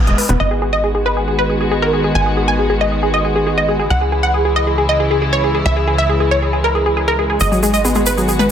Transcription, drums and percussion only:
0.07 closed hi-hat medium
0.18 open hi-hat medium
0.29 closed hi-hat medium
7.40 shaker soft
7.52 shaker soft
7.63 shaker medium
7.74 shaker soft
7.85 shaker soft
7.95 shaker soft
8.06 shaker medium
8.18 shaker soft
8.28 shaker soft
8.40 shaker soft

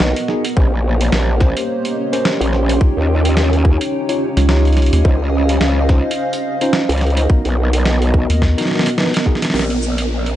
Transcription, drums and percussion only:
0.00 snare loud
0.16 closed hi-hat medium
0.28 snare soft
0.45 closed hi-hat medium
0.57 kick loud
1.01 closed hi-hat medium
1.12 snare loud
1.40 kick loud
1.40 snare soft
1.57 closed hi-hat medium
1.85 closed hi-hat soft
2.13 closed hi-hat medium
2.25 snare loud
2.41 closed hi-hat soft
2.53 snare soft
2.69 closed hi-hat medium
2.81 kick loud
3.25 closed hi-hat medium
3.37 snare loud
3.53 closed hi-hat soft
3.65 kick loud
3.81 closed hi-hat medium
4.09 closed hi-hat medium
4.37 snare soft
4.37 closed hi-hat medium
4.49 snare loud
4.65 closed hi-hat soft
4.67 closed hi-hat soft
4.73 closed hi-hat soft
4.77 snare soft
4.77 closed hi-hat soft
4.82 closed hi-hat soft
4.86 closed hi-hat soft
4.93 closed hi-hat medium
5.05 kick loud
5.49 closed hi-hat medium
5.61 snare loud
5.89 kick loud
5.89 snare soft
6.11 closed hi-hat medium
6.33 closed hi-hat medium
6.61 closed hi-hat medium
6.73 snare loud
6.89 closed hi-hat soft
6.92 closed hi-hat soft
6.98 snare soft
6.98 closed hi-hat soft
7.01 closed hi-hat soft
7.07 closed hi-hat soft
7.10 closed hi-hat soft
7.17 closed hi-hat medium
7.30 kick loud
7.45 closed hi-hat soft
7.73 closed hi-hat medium
7.85 snare loud
8.02 closed hi-hat soft
8.14 kick loud
8.30 closed hi-hat medium
8.42 kick medium
8.42 snare medium
8.58 snare soft
8.58 closed hi-hat medium
8.65 snare soft
8.68 snare soft
8.71 snare soft
8.75 snare medium
8.79 snare medium
8.83 snare medium
8.83 closed hi-hat medium
8.87 snare medium
8.98 snare medium
9.00 snare medium
9.03 snare medium
9.06 snare soft
9.11 snare soft
9.11 closed hi-hat medium
9.16 snare medium
9.16 closed hi-hat soft
9.20 closed hi-hat soft
9.22 closed hi-hat soft
9.24 kick medium
9.24 closed hi-hat soft
9.35 snare soft
9.42 snare medium
9.42 closed hi-hat medium
9.45 snare medium
9.50 snare medium
9.54 snare medium
9.59 snare medium
9.70 closed hi-hat soft
9.82 shaker medium
9.98 closed hi-hat medium
10.26 closed hi-hat soft

